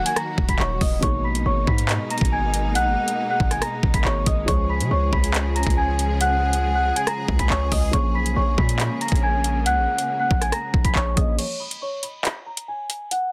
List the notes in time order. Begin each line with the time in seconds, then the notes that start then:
Already playing: D#3 F#3 A#3 F#4
0.06 G#5 G#6, closed hi-hat
0.16 A#5 A#6, cross-stick, closed hi-hat
0.38 D#1, kick
0.49 D#1 B5 B6, kick, closed hi-hat
0.59 D#1 C#5 C#6, clap
0.81 D#1 D#5 D#6, kick, open hi-hat
1.00 G#1 B2 G#3 A#3 D#4 C#5 C#6, kick, closed hi-hat
1.05 G#4
1.24 A#1 B5 B6
1.35 closed hi-hat
1.46 G#1 C#5 C#6
1.67 G#2 B5 B6, kick
1.78 closed hi-hat
1.89 clap, closed hi-hat
2.10 A#5 A#6, closed hi-hat
2.18 G#1, kick, closed hi-hat
2.25 closed hi-hat
2.32 G#5 G#6
2.54 closed hi-hat
2.75 B1 F#5 F#6, closed hi-hat
2.86 G#1
3.08 closed hi-hat
3.30 F#5 F#6
3.40 G#1, kick
3.51 G#5 G#6, cross-stick, closed hi-hat
3.62 A#5 A#6, cross-stick, closed hi-hat
3.83 G#1, kick
3.94 G#1 B5 B6, kick, closed hi-hat
4.05 G#1 C#5 C#6, clap
4.26 G#1 D#5 D#6, kick, closed hi-hat
4.46 C#2 C#3 F3 G#3 C#4 G#4 C#5 C#6, kick, closed hi-hat
4.50 C#5
4.69 B5 B6
4.80 C#3, closed hi-hat
4.91 C#2 C#5 C#6
5.13 C#2 B5 B6, kick
5.24 closed hi-hat
5.34 clap, closed hi-hat
5.56 A#5 A#6, closed hi-hat
5.63 C#2, kick, closed hi-hat
5.70 closed hi-hat
5.77 G#5 G#6
5.99 closed hi-hat
6.21 F#5 F#6, closed hi-hat
6.53 closed hi-hat
6.74 F#5 F#6
6.96 G#5 G#6, closed hi-hat
7.07 A#5 A#6, cross-stick, closed hi-hat
7.28 C#2, kick
7.39 C#2 B5 B6, kick, closed hi-hat
7.50 C#2 C#5 C#6, clap
7.72 C#2 D#5 D#6, kick, open hi-hat
7.91 A#1 C#3 F3 A#3 C#4 G#4 C#5 C#6, kick, closed hi-hat
7.95 C#5
8.15 B1 B5 B6
8.26 closed hi-hat
8.36 A#1 C#5 C#6
8.58 A#2 B5 B6, kick
8.69 closed hi-hat
8.79 clap, closed hi-hat
9.01 A#5 A#6, closed hi-hat
9.08 A#1, kick, closed hi-hat
9.16 closed hi-hat
9.23 G#5 G#6
9.44 closed hi-hat
9.66 C#2 F#5 F#6, closed hi-hat
9.77 A#1
9.98 closed hi-hat
10.20 F#5 F#6
10.31 A#1, kick
10.41 G#5 G#6, cross-stick, closed hi-hat
10.52 A#5 A#6, cross-stick, closed hi-hat
10.74 A#1, kick
10.85 A#1 B5 B6, kick, closed hi-hat
10.95 A#1 C#5 C#6, clap
11.16 A#1 F3 A#3 C#4 G#4 D#5 D#6, kick, closed hi-hat
11.38 C#5 C#6, closed hi-hat, crash
11.60 B5 B6
11.71 closed hi-hat
11.82 C#5 C#6
12.03 B5 B6, closed hi-hat
12.25 clap, closed hi-hat
12.46 A#5 A#6
12.57 closed hi-hat
12.68 G#5 G#6
12.90 closed hi-hat
13.11 F#5 F#6, closed hi-hat